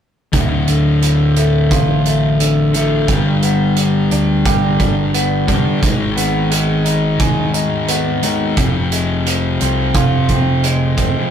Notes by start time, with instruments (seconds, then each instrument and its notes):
0.32 picked electric bass D1, distorted electric guitar D2 A2 D3, clean electric guitar D2, kick, closed hi-hat
0.68 picked electric bass D1, clean electric guitar D3, closed hi-hat
1.02 clean electric guitar A2, closed hi-hat
1.36 clean electric guitar A3, closed hi-hat
1.71 picked electric bass A1, clean electric guitar F4, kick, closed hi-hat
2.06 clean electric guitar A3, closed hi-hat
2.40 clean electric guitar D3, closed hi-hat
2.73 distorted electric guitar D2 A2 D3, clean electric guitar A3, closed hi-hat
3.08 picked electric bass G1, distorted electric guitar G2 D3 G3, clean electric guitar G2, kick, closed hi-hat
3.42 clean electric guitar B3, closed hi-hat
3.76 clean electric guitar G3, closed hi-hat
4.11 picked electric bass D2, clean electric guitar D4, closed hi-hat
4.45 clean electric guitar G4, kick, closed hi-hat
4.80 picked electric bass G1, clean electric guitar D4, kick, closed hi-hat
5.14 clean electric guitar B3, closed hi-hat
5.47 picked electric bass F1, distorted electric guitar G2 D3 G3, clean electric guitar D4, kick, closed hi-hat
5.82 picked electric bass G#1, distorted electric guitar G#2 D#3 G#3, clean electric guitar G#2, kick, closed hi-hat
6.16 picked electric bass G#1, clean electric guitar B3, closed hi-hat
6.51 clean electric guitar G#3, closed hi-hat
6.85 clean electric guitar D#4, closed hi-hat
7.20 picked electric bass D#1, clean electric guitar G#4, kick, closed hi-hat
7.54 clean electric guitar D#4, closed hi-hat
7.88 clean electric guitar B3, closed hi-hat
8.22 distorted electric guitar G#2 D#3 G#3, clean electric guitar D#4, closed hi-hat
8.57 picked electric bass F1, distorted electric guitar F2 C3 F3, clean electric guitar F2, kick, closed hi-hat
8.92 clean electric guitar G#3, closed hi-hat
9.26 clean electric guitar F3, closed hi-hat
9.61 picked electric bass C2, clean electric guitar C4, closed hi-hat
9.94 picked electric bass F1, clean electric guitar F4, kick, closed hi-hat
10.29 picked electric bass F1, clean electric guitar C4, kick, closed hi-hat
10.64 clean electric guitar G#3, closed hi-hat
10.96 picked electric bass F2, distorted electric guitar F2 C3 F3, clean electric guitar C4, kick, closed hi-hat